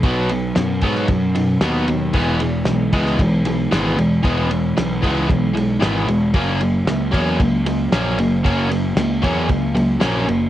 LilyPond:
<<
  \new Staff \with { instrumentName = "Overdriven electric guitar" } { \clef bass \time 4/4 \key fis \mixolydian \tempo 4 = 114 <b, fis b>8 <b, fis>8 <b, fis>8 <b, fis b>8 <b, fis>8 <b, fis>8 <b, fis b>8 <b, fis>8 | <e gis b>8 <e gis>8 <e gis>8 <e gis b>8 <e gis>8 <e gis>8 <e gis b>8 <e gis>8 | <e gis b>8 <e gis>8 <e gis>8 <e gis b>8 <e gis>8 <e gis>8 <e gis b>8 <e gis>8 | <fis ais cis'>8 <fis ais>8 <fis ais>8 <fis ais cis'>8 <fis ais>8 <fis ais>8 <fis ais cis'>8 <fis ais>8 |
<fis ais cis'>8 <fis ais>8 <fis ais>8 <fis ais cis'>8 <fis ais>8 <fis ais>8 <fis ais cis'>8 <fis ais>8 | }
  \new Staff \with { instrumentName = "Picked electric bass" } { \clef bass \time 4/4 \key fis \mixolydian b,,4 fis,8 gis,8 fis,4 dis,8 dis,8 | e,,4 b,,8 cis,8 b,,4 gis,,8 e,,8 | e,,4 b,,8 cis,8 b,,4 gis,,8 e,,8 | fis,,4 cis,8 e,8 cis,4 ais,,8 fis,,8 |
fis,,4 cis,8 e,8 cis,4 ais,,8 fis,,8 | }
  \new DrumStaff \with { instrumentName = "Drums" } \drummode { \time 4/4 <bd cymr>8 cymr8 <cymr sn>8 <bd cymr>16 sn16 <bd cymr>8 cymr8 <cymr sn>8 cymr8 | <cymc bd>8 cymr8 <cymr sn>8 <bd cymr>16 sn16 <bd cymr>8 cymr8 <cymr sn>8 cymr8 | <bd cymr>8 cymr8 <cymr sn>8 <bd cymr>8 <bd cymr>8 cymr8 <cymr sn>8 cymr8 | <bd cymr>8 cymr8 <cymr sn>8 <bd cymr>8 <bd cymr>8 cymr8 <cymr sn>8 cymr8 |
<bd cymr>8 cymr8 <cymr sn>8 <bd cymr>8 <bd cymr>8 cymr8 <cymr sn>8 cymr8 | }
>>